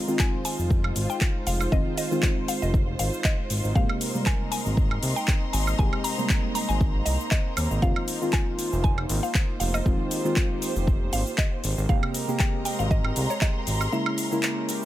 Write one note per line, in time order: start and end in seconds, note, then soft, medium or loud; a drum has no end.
0.00 1.01 G#3 medium
0.00 3.46 G#3 medium
0.00 3.46 D#4 medium
0.00 3.46 F4 medium
0.00 4.66 F4 medium
0.00 3.46 C5 medium
0.00 0.98 D#5 medium
0.00 0.21 F5 loud
0.00 0.57 A#5 medium
0.00 0.39 C6 medium
0.07 1.69 D#3 medium
0.07 1.69 G#3 medium
0.07 1.69 C4 medium
0.07 1.70 F4 medium
0.07 shaker soft
0.19 0.44 G#5 loud
0.19 kick loud
0.19 clap loud
0.19 shaker soft
0.24 4.47 C5 medium
0.45 1.12 G#5 loud
0.45 open hi-hat loud
0.45 shaker medium
0.59 0.92 F1 medium
0.59 shaker soft
0.70 kick loud
0.70 shaker soft
0.84 high woodblock medium
0.96 1.07 G#1 loud
0.96 open hi-hat loud
0.96 shaker medium
1.10 1.48 G5 loud
1.10 shaker soft
1.21 kick loud
1.21 clap loud
1.21 shaker soft
1.47 1.67 F1 medium
1.47 1.70 F5 loud
1.47 open hi-hat loud
1.47 shaker medium
1.61 high woodblock medium
1.61 shaker soft
1.72 1.83 F1 loud
1.72 2.08 D#3 medium
1.72 2.08 G#3 medium
1.72 2.08 C4 medium
1.72 2.08 F4 loud
1.72 1.96 D#5 loud
1.72 kick loud
1.72 shaker soft
1.97 2.50 D#5 loud
1.97 open hi-hat loud
1.97 shaker medium
2.11 3.48 D#3 loud
2.11 3.49 G#3 medium
2.11 3.49 C4 medium
2.11 3.49 F4 loud
2.11 shaker soft
2.22 kick loud
2.22 clap loud
2.22 shaker soft
2.48 2.55 F5 loud
2.48 open hi-hat loud
2.48 shaker medium
2.62 2.95 F1 medium
2.62 3.00 D#5 loud
2.62 shaker soft
2.74 kick loud
2.74 shaker soft
2.99 3.10 G#1 medium
2.99 3.25 F5 loud
2.99 open hi-hat loud
2.99 shaker medium
3.14 shaker soft
3.24 3.72 D#5 loud
3.24 kick loud
3.24 clap loud
3.24 shaker soft
3.50 3.61 G#1 medium
3.50 9.35 G#3 medium
3.50 11.60 A#3 medium
3.50 7.78 C4 medium
3.50 7.78 D#4 medium
3.50 5.51 A#4 medium
3.50 open hi-hat loud
3.50 shaker medium
3.64 3.73 G#1 loud
3.64 8.76 D#5 medium
3.64 shaker soft
3.75 3.87 G#1 loud
3.75 4.11 C3 medium
3.75 4.11 G#3 medium
3.75 4.12 A#3 medium
3.75 4.12 G4 loud
3.75 4.28 F5 loud
3.75 kick loud
3.75 shaker soft
3.89 high woodblock medium
3.97 8.82 C6 medium
4.01 open hi-hat loud
4.01 shaker medium
4.14 5.76 C3 medium
4.14 5.76 G3 medium
4.14 5.76 G#3 medium
4.14 5.76 A#3 medium
4.14 shaker soft
4.26 4.50 G#5 loud
4.26 kick loud
4.26 clap loud
4.26 shaker soft
4.42 8.84 A#5 medium
4.52 5.18 G#5 loud
4.52 open hi-hat loud
4.52 shaker medium
4.66 4.99 G#1 medium
4.66 shaker soft
4.77 kick loud
4.77 shaker soft
4.91 high woodblock medium
5.03 5.14 C2 loud
5.03 open hi-hat loud
5.03 shaker medium
5.16 5.55 G5 loud
5.16 shaker soft
5.28 kick loud
5.28 clap loud
5.28 shaker soft
5.53 5.74 G#1 medium
5.53 11.60 C5 medium
5.53 5.77 G#5 loud
5.53 open hi-hat loud
5.53 shaker medium
5.67 high woodblock medium
5.67 shaker soft
5.79 5.90 G#1 loud
5.79 6.15 C3 medium
5.79 6.15 G#3 medium
5.79 6.15 A#3 medium
5.79 6.15 G4 loud
5.79 6.05 G#5 loud
5.79 kick loud
5.79 shaker soft
5.93 high woodblock medium
6.04 6.51 A#5 loud
6.04 open hi-hat loud
6.04 shaker medium
6.18 7.79 C3 loud
6.18 7.80 G3 loud
6.18 7.79 G#3 medium
6.18 7.80 A#3 medium
6.18 shaker soft
6.29 kick loud
6.29 clap loud
6.29 shaker soft
6.55 6.68 A#5 loud
6.55 open hi-hat loud
6.55 shaker medium
6.69 7.02 G#1 medium
6.69 7.03 G#5 loud
6.69 shaker soft
6.81 kick loud
6.81 shaker soft
7.06 7.17 C2 medium
7.06 7.30 D#5 loud
7.06 open hi-hat loud
7.06 shaker medium
7.20 shaker soft
7.31 7.84 D#5 loud
7.31 kick loud
7.31 clap loud
7.31 shaker soft
7.57 7.68 D#2 medium
7.57 open hi-hat loud
7.57 high woodblock medium
7.57 shaker medium
7.71 7.80 G#1 loud
7.71 shaker soft
7.82 7.93 F1 loud
7.82 8.18 D#3 medium
7.82 8.18 G#3 medium
7.82 8.18 C4 medium
7.82 11.60 D#4 medium
7.82 12.56 F4 medium
7.82 9.84 F4 medium
7.82 8.18 F4 loud
7.82 8.35 F5 loud
7.82 kick loud
7.82 shaker soft
7.96 high woodblock medium
8.08 open hi-hat loud
8.08 shaker medium
8.21 9.83 D#3 medium
8.21 9.83 G#3 medium
8.21 9.83 C4 medium
8.21 9.83 F4 medium
8.21 shaker soft
8.33 8.83 G#5 loud
8.33 kick loud
8.33 clap loud
8.33 shaker soft
8.53 12.56 C5 medium
8.59 open hi-hat loud
8.59 shaker medium
8.72 9.06 F1 medium
8.72 shaker soft
8.84 9.24 G#5 loud
8.84 kick loud
8.84 shaker soft
8.98 high woodblock medium
9.09 9.20 G#1 loud
9.09 open hi-hat loud
9.09 shaker medium
9.23 9.59 F5 loud
9.23 shaker soft
9.34 kick loud
9.34 clap loud
9.34 shaker soft
9.60 9.81 F1 medium
9.60 9.73 F5 loud
9.60 open hi-hat loud
9.60 shaker medium
9.74 11.17 D#5 loud
9.74 high woodblock medium
9.74 shaker soft
9.85 9.97 F1 loud
9.85 10.22 D#3 medium
9.85 10.22 G#3 medium
9.85 10.22 C4 medium
9.85 10.22 F4 loud
9.85 11.62 G4 medium
9.85 kick loud
9.85 shaker soft
10.11 open hi-hat loud
10.11 shaker medium
10.24 11.62 D#3 loud
10.24 11.62 G#3 medium
10.24 11.62 C4 medium
10.24 11.63 F4 loud
10.24 shaker soft
10.36 kick loud
10.36 clap loud
10.36 shaker soft
10.62 open hi-hat loud
10.62 shaker medium
10.76 11.09 F1 medium
10.76 shaker soft
10.87 kick loud
10.87 shaker soft
11.13 11.24 G#1 medium
11.13 11.24 F5 loud
11.13 open hi-hat loud
11.13 shaker medium
11.27 shaker soft
11.38 11.91 D#5 loud
11.38 kick loud
11.38 clap loud
11.38 shaker soft
11.64 11.75 G#1 medium
11.64 14.85 G#3 medium
11.64 13.93 G#3 medium
11.64 13.90 C4 medium
11.64 13.90 G4 medium
11.64 13.90 A#4 loud
11.64 open hi-hat loud
11.64 shaker medium
11.78 11.87 G#1 loud
11.78 shaker soft
11.89 12.00 G#1 loud
11.89 12.25 C3 medium
11.89 12.25 G#3 medium
11.89 12.25 A#3 medium
11.89 12.25 G4 loud
11.89 12.41 F5 loud
11.89 kick loud
11.89 shaker soft
12.00 14.74 A#5 medium
12.00 high woodblock medium
12.08 13.93 D#5 medium
12.14 open hi-hat loud
12.14 shaker medium
12.28 13.89 C3 medium
12.28 13.90 G#3 medium
12.28 13.90 A#3 medium
12.28 13.90 G4 medium
12.28 shaker soft
12.39 12.64 G5 loud
12.39 kick loud
12.39 clap loud
12.39 shaker soft
12.65 12.78 G5 loud
12.65 14.74 C6 medium
12.65 open hi-hat loud
12.65 shaker medium
12.79 13.12 G#1 medium
12.79 12.84 F5 medium
12.79 shaker soft
12.91 13.31 D#5 loud
12.91 kick loud
12.91 shaker soft
13.05 high woodblock medium
13.16 13.27 C2 loud
13.16 open hi-hat loud
13.16 shaker medium
13.30 13.42 C#5 medium
13.30 shaker soft
13.41 13.89 D#5 loud
13.41 kick loud
13.41 clap loud
13.41 shaker soft
13.67 13.88 G#1 medium
13.67 open hi-hat loud
13.67 shaker medium
13.81 high woodblock medium
13.81 shaker soft
13.92 14.28 C#3 medium
13.92 14.28 G#3 medium
13.92 14.29 A#3 medium
13.92 14.85 C#4 medium
13.92 14.85 E4 medium
13.92 14.29 E4 loud
13.92 14.85 A#4 medium
13.92 14.85 E5 medium
13.92 shaker soft
14.06 high woodblock medium
14.18 open hi-hat loud
14.18 shaker medium
14.31 14.85 C#3 loud
14.31 14.85 G#3 medium
14.31 14.85 A#3 medium
14.31 14.85 E4 loud
14.31 shaker soft
14.42 14.85 G4 medium
14.42 clap loud
14.42 shaker soft
14.69 open hi-hat loud
14.69 shaker medium